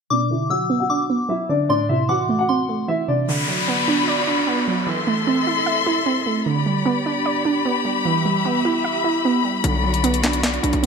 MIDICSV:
0, 0, Header, 1, 8, 480
1, 0, Start_track
1, 0, Tempo, 397351
1, 124, Time_signature, 4, 2, 24, 8
1, 13119, End_track
2, 0, Start_track
2, 0, Title_t, "Synth bell"
2, 0, Program_c, 0, 98
2, 125, Note_on_c, 0, 86, 98
2, 576, Note_off_c, 0, 86, 0
2, 609, Note_on_c, 0, 88, 84
2, 1058, Note_off_c, 0, 88, 0
2, 1083, Note_on_c, 0, 86, 86
2, 1535, Note_off_c, 0, 86, 0
2, 2050, Note_on_c, 0, 84, 101
2, 2499, Note_off_c, 0, 84, 0
2, 2522, Note_on_c, 0, 86, 88
2, 2974, Note_off_c, 0, 86, 0
2, 3005, Note_on_c, 0, 84, 90
2, 3456, Note_off_c, 0, 84, 0
2, 13119, End_track
3, 0, Start_track
3, 0, Title_t, "String section"
3, 0, Program_c, 1, 48
3, 3965, Note_on_c, 1, 74, 78
3, 3966, Note_on_c, 1, 66, 82
3, 3966, Note_on_c, 1, 83, 89
3, 5866, Note_off_c, 1, 66, 0
3, 5866, Note_off_c, 1, 74, 0
3, 5866, Note_off_c, 1, 83, 0
3, 5882, Note_on_c, 1, 84, 93
3, 5883, Note_on_c, 1, 69, 83
3, 5883, Note_on_c, 1, 76, 80
3, 7784, Note_off_c, 1, 84, 0
3, 7785, Note_off_c, 1, 69, 0
3, 7785, Note_off_c, 1, 76, 0
3, 7803, Note_on_c, 1, 83, 92
3, 7804, Note_on_c, 1, 67, 86
3, 7804, Note_on_c, 1, 74, 78
3, 9705, Note_off_c, 1, 74, 0
3, 9726, Note_on_c, 1, 76, 79
3, 11606, Note_off_c, 1, 67, 0
3, 11626, Note_off_c, 1, 76, 0
3, 11644, Note_on_c, 1, 74, 79
3, 11645, Note_on_c, 1, 66, 87
3, 13119, Note_off_c, 1, 66, 0
3, 13119, Note_off_c, 1, 74, 0
3, 13119, Note_off_c, 1, 83, 0
3, 13119, End_track
4, 0, Start_track
4, 0, Title_t, "Grand piano"
4, 0, Program_c, 2, 0
4, 124, Note_on_c, 2, 74, 98
4, 133, Note_on_c, 2, 62, 82
4, 328, Note_off_c, 2, 74, 0
4, 334, Note_off_c, 2, 62, 0
4, 365, Note_on_c, 2, 76, 79
4, 375, Note_on_c, 2, 64, 65
4, 569, Note_off_c, 2, 76, 0
4, 574, Note_off_c, 2, 64, 0
4, 604, Note_on_c, 2, 78, 76
4, 615, Note_on_c, 2, 66, 62
4, 943, Note_off_c, 2, 78, 0
4, 949, Note_off_c, 2, 66, 0
4, 965, Note_on_c, 2, 78, 73
4, 974, Note_on_c, 2, 66, 56
4, 1529, Note_off_c, 2, 78, 0
4, 1534, Note_off_c, 2, 66, 0
4, 1564, Note_on_c, 2, 76, 78
4, 1574, Note_on_c, 2, 64, 65
4, 1768, Note_off_c, 2, 76, 0
4, 1774, Note_off_c, 2, 64, 0
4, 1804, Note_on_c, 2, 74, 80
4, 1813, Note_on_c, 2, 62, 63
4, 2008, Note_off_c, 2, 74, 0
4, 2014, Note_off_c, 2, 62, 0
4, 2044, Note_on_c, 2, 74, 101
4, 2053, Note_on_c, 2, 62, 83
4, 2248, Note_off_c, 2, 74, 0
4, 2253, Note_off_c, 2, 62, 0
4, 2285, Note_on_c, 2, 76, 82
4, 2294, Note_on_c, 2, 64, 60
4, 2489, Note_off_c, 2, 76, 0
4, 2494, Note_off_c, 2, 64, 0
4, 2524, Note_on_c, 2, 78, 79
4, 2533, Note_on_c, 2, 66, 63
4, 2863, Note_off_c, 2, 78, 0
4, 2868, Note_off_c, 2, 66, 0
4, 2884, Note_on_c, 2, 78, 72
4, 2894, Note_on_c, 2, 66, 53
4, 3448, Note_off_c, 2, 78, 0
4, 3454, Note_off_c, 2, 66, 0
4, 3484, Note_on_c, 2, 76, 80
4, 3494, Note_on_c, 2, 64, 60
4, 3688, Note_off_c, 2, 76, 0
4, 3694, Note_off_c, 2, 64, 0
4, 3725, Note_on_c, 2, 74, 77
4, 3734, Note_on_c, 2, 62, 54
4, 3929, Note_off_c, 2, 74, 0
4, 3934, Note_off_c, 2, 62, 0
4, 13119, End_track
5, 0, Start_track
5, 0, Title_t, "Synth pluck"
5, 0, Program_c, 3, 84
5, 126, Note_on_c, 3, 47, 94
5, 364, Note_on_c, 3, 50, 83
5, 602, Note_on_c, 3, 54, 91
5, 842, Note_on_c, 3, 59, 89
5, 1082, Note_on_c, 3, 62, 100
5, 1312, Note_off_c, 3, 59, 0
5, 1326, Note_off_c, 3, 47, 0
5, 1326, Note_on_c, 3, 59, 80
5, 1541, Note_off_c, 3, 54, 0
5, 1556, Note_on_c, 3, 54, 88
5, 1565, Note_off_c, 3, 50, 0
5, 1804, Note_on_c, 3, 50, 84
5, 2040, Note_off_c, 3, 54, 0
5, 2043, Note_off_c, 3, 62, 0
5, 2045, Note_off_c, 3, 50, 0
5, 2045, Note_off_c, 3, 59, 0
5, 2045, Note_on_c, 3, 45, 89
5, 2291, Note_on_c, 3, 48, 84
5, 2522, Note_on_c, 3, 52, 91
5, 2768, Note_on_c, 3, 57, 85
5, 3011, Note_on_c, 3, 60, 100
5, 3231, Note_off_c, 3, 57, 0
5, 3245, Note_off_c, 3, 45, 0
5, 3246, Note_on_c, 3, 57, 79
5, 3466, Note_off_c, 3, 52, 0
5, 3480, Note_on_c, 3, 52, 88
5, 3488, Note_off_c, 3, 48, 0
5, 3724, Note_on_c, 3, 48, 78
5, 3963, Note_off_c, 3, 52, 0
5, 3965, Note_off_c, 3, 48, 0
5, 3965, Note_off_c, 3, 57, 0
5, 3968, Note_off_c, 3, 60, 0
5, 3971, Note_on_c, 3, 50, 90
5, 4204, Note_on_c, 3, 54, 77
5, 4446, Note_on_c, 3, 59, 93
5, 4686, Note_on_c, 3, 62, 82
5, 4926, Note_on_c, 3, 74, 99
5, 5149, Note_off_c, 3, 62, 0
5, 5163, Note_on_c, 3, 62, 81
5, 5168, Note_off_c, 3, 50, 0
5, 5386, Note_off_c, 3, 59, 0
5, 5400, Note_on_c, 3, 59, 87
5, 5404, Note_off_c, 3, 54, 0
5, 5650, Note_on_c, 3, 54, 82
5, 5880, Note_on_c, 3, 52, 94
5, 5883, Note_off_c, 3, 59, 0
5, 5884, Note_off_c, 3, 62, 0
5, 5886, Note_off_c, 3, 74, 0
5, 5887, Note_off_c, 3, 54, 0
5, 6126, Note_on_c, 3, 57, 79
5, 6369, Note_on_c, 3, 60, 95
5, 6608, Note_on_c, 3, 64, 82
5, 6842, Note_on_c, 3, 76, 112
5, 7071, Note_off_c, 3, 64, 0
5, 7083, Note_off_c, 3, 52, 0
5, 7086, Note_on_c, 3, 64, 89
5, 7308, Note_off_c, 3, 60, 0
5, 7322, Note_on_c, 3, 60, 84
5, 7326, Note_off_c, 3, 57, 0
5, 7564, Note_on_c, 3, 57, 76
5, 7803, Note_off_c, 3, 76, 0
5, 7804, Note_off_c, 3, 60, 0
5, 7805, Note_off_c, 3, 57, 0
5, 7805, Note_off_c, 3, 64, 0
5, 7805, Note_on_c, 3, 50, 86
5, 8046, Note_on_c, 3, 55, 78
5, 8281, Note_on_c, 3, 59, 91
5, 8527, Note_on_c, 3, 62, 87
5, 8766, Note_on_c, 3, 74, 99
5, 8989, Note_off_c, 3, 62, 0
5, 9003, Note_on_c, 3, 62, 84
5, 9005, Note_off_c, 3, 50, 0
5, 9232, Note_off_c, 3, 59, 0
5, 9245, Note_off_c, 3, 55, 0
5, 9246, Note_on_c, 3, 59, 90
5, 9484, Note_on_c, 3, 55, 77
5, 9724, Note_off_c, 3, 62, 0
5, 9725, Note_off_c, 3, 55, 0
5, 9725, Note_off_c, 3, 59, 0
5, 9725, Note_off_c, 3, 74, 0
5, 9729, Note_on_c, 3, 52, 96
5, 9970, Note_on_c, 3, 55, 83
5, 10211, Note_on_c, 3, 59, 90
5, 10449, Note_on_c, 3, 64, 91
5, 10683, Note_on_c, 3, 76, 108
5, 10909, Note_off_c, 3, 64, 0
5, 10923, Note_on_c, 3, 64, 87
5, 10927, Note_off_c, 3, 52, 0
5, 11160, Note_off_c, 3, 59, 0
5, 11168, Note_off_c, 3, 55, 0
5, 11174, Note_on_c, 3, 59, 92
5, 11402, Note_on_c, 3, 55, 81
5, 11644, Note_off_c, 3, 55, 0
5, 11644, Note_off_c, 3, 64, 0
5, 11644, Note_off_c, 3, 76, 0
5, 11649, Note_off_c, 3, 59, 0
5, 11651, Note_on_c, 3, 50, 89
5, 11882, Note_on_c, 3, 54, 79
5, 12126, Note_on_c, 3, 59, 97
5, 12364, Note_on_c, 3, 62, 85
5, 12605, Note_on_c, 3, 74, 102
5, 12827, Note_off_c, 3, 62, 0
5, 12842, Note_on_c, 3, 62, 81
5, 12848, Note_off_c, 3, 50, 0
5, 13065, Note_off_c, 3, 59, 0
5, 13080, Note_on_c, 3, 59, 86
5, 13084, Note_off_c, 3, 54, 0
5, 13119, Note_off_c, 3, 59, 0
5, 13119, Note_off_c, 3, 62, 0
5, 13119, Note_off_c, 3, 74, 0
5, 13119, End_track
6, 0, Start_track
6, 0, Title_t, "808-style bass"
6, 0, Program_c, 4, 38
6, 11645, Note_on_c, 4, 35, 111
6, 12797, Note_off_c, 4, 35, 0
6, 12844, Note_on_c, 4, 35, 102
6, 12957, Note_off_c, 4, 35, 0
6, 12964, Note_on_c, 4, 35, 105
6, 13119, Note_off_c, 4, 35, 0
6, 13119, End_track
7, 0, Start_track
7, 0, Title_t, "Downlifter"
7, 0, Program_c, 5, 103
7, 3965, Note_on_c, 5, 60, 83
7, 7805, Note_off_c, 5, 60, 0
7, 13119, End_track
8, 0, Start_track
8, 0, Title_t, "Drums"
8, 11645, Note_on_c, 9, 42, 79
8, 11766, Note_off_c, 9, 42, 0
8, 12005, Note_on_c, 9, 42, 58
8, 12126, Note_off_c, 9, 42, 0
8, 12127, Note_on_c, 9, 42, 72
8, 12247, Note_off_c, 9, 42, 0
8, 12247, Note_on_c, 9, 42, 59
8, 12364, Note_off_c, 9, 42, 0
8, 12364, Note_on_c, 9, 42, 76
8, 12365, Note_on_c, 9, 38, 91
8, 12378, Note_on_c, 9, 39, 73
8, 12483, Note_off_c, 9, 42, 0
8, 12483, Note_on_c, 9, 42, 72
8, 12486, Note_off_c, 9, 38, 0
8, 12499, Note_off_c, 9, 39, 0
8, 12604, Note_off_c, 9, 42, 0
8, 12605, Note_on_c, 9, 38, 108
8, 12607, Note_on_c, 9, 42, 78
8, 12618, Note_on_c, 9, 39, 89
8, 12726, Note_off_c, 9, 38, 0
8, 12726, Note_off_c, 9, 42, 0
8, 12726, Note_on_c, 9, 42, 50
8, 12739, Note_off_c, 9, 39, 0
8, 12847, Note_off_c, 9, 42, 0
8, 12849, Note_on_c, 9, 42, 74
8, 12961, Note_off_c, 9, 42, 0
8, 12961, Note_on_c, 9, 42, 60
8, 13082, Note_off_c, 9, 42, 0
8, 13119, End_track
0, 0, End_of_file